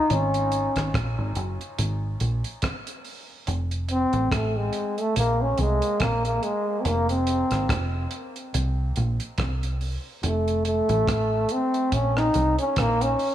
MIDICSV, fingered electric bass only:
0, 0, Header, 1, 2, 480
1, 0, Start_track
1, 0, Key_signature, -5, "minor"
1, 0, Tempo, 845070
1, 57, Time_signature, 4, 2, 24, 8
1, 7582, End_track
2, 0, Start_track
2, 0, Title_t, "Fingered electric bass"
2, 0, Program_c, 0, 33
2, 58, Note_on_c, 0, 32, 104
2, 381, Note_off_c, 0, 32, 0
2, 431, Note_on_c, 0, 32, 81
2, 521, Note_off_c, 0, 32, 0
2, 535, Note_on_c, 0, 34, 84
2, 652, Note_off_c, 0, 34, 0
2, 672, Note_on_c, 0, 32, 86
2, 762, Note_off_c, 0, 32, 0
2, 773, Note_on_c, 0, 30, 92
2, 891, Note_off_c, 0, 30, 0
2, 1014, Note_on_c, 0, 32, 99
2, 1222, Note_off_c, 0, 32, 0
2, 1254, Note_on_c, 0, 34, 88
2, 1371, Note_off_c, 0, 34, 0
2, 1976, Note_on_c, 0, 29, 103
2, 2299, Note_off_c, 0, 29, 0
2, 2347, Note_on_c, 0, 33, 96
2, 2438, Note_off_c, 0, 33, 0
2, 2452, Note_on_c, 0, 33, 86
2, 2660, Note_off_c, 0, 33, 0
2, 2933, Note_on_c, 0, 34, 87
2, 3141, Note_off_c, 0, 34, 0
2, 3172, Note_on_c, 0, 36, 89
2, 3289, Note_off_c, 0, 36, 0
2, 3412, Note_on_c, 0, 34, 87
2, 3620, Note_off_c, 0, 34, 0
2, 3892, Note_on_c, 0, 29, 111
2, 4216, Note_off_c, 0, 29, 0
2, 4267, Note_on_c, 0, 32, 88
2, 4358, Note_off_c, 0, 32, 0
2, 4370, Note_on_c, 0, 29, 92
2, 4578, Note_off_c, 0, 29, 0
2, 4853, Note_on_c, 0, 36, 91
2, 5060, Note_off_c, 0, 36, 0
2, 5095, Note_on_c, 0, 34, 97
2, 5211, Note_off_c, 0, 34, 0
2, 5331, Note_on_c, 0, 36, 84
2, 5656, Note_off_c, 0, 36, 0
2, 5812, Note_on_c, 0, 29, 116
2, 6137, Note_off_c, 0, 29, 0
2, 6187, Note_on_c, 0, 33, 102
2, 6278, Note_off_c, 0, 33, 0
2, 6292, Note_on_c, 0, 33, 92
2, 6500, Note_off_c, 0, 33, 0
2, 6771, Note_on_c, 0, 34, 94
2, 6980, Note_off_c, 0, 34, 0
2, 7015, Note_on_c, 0, 36, 98
2, 7131, Note_off_c, 0, 36, 0
2, 7254, Note_on_c, 0, 34, 83
2, 7461, Note_off_c, 0, 34, 0
2, 7582, End_track
0, 0, End_of_file